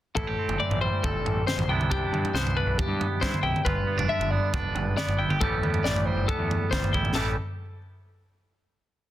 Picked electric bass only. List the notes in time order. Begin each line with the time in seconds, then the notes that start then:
0.17 A1
0.48 G1
0.70 A1
1.04 G1
1.25 A1
1.57 A1
1.68 C2
2.12 G2
2.34 C2
2.67 B1
2.88 G2
3.22 G2
3.43 B1
3.66 G1
3.97 F1
4.19 G1
4.54 F1
4.74 G1
5.07 G1
5.29 G1
5.41 A1
5.61 E2
5.83 A1
6.16 G1
6.39 E2
6.72 G1
6.94 A1
7.16 A1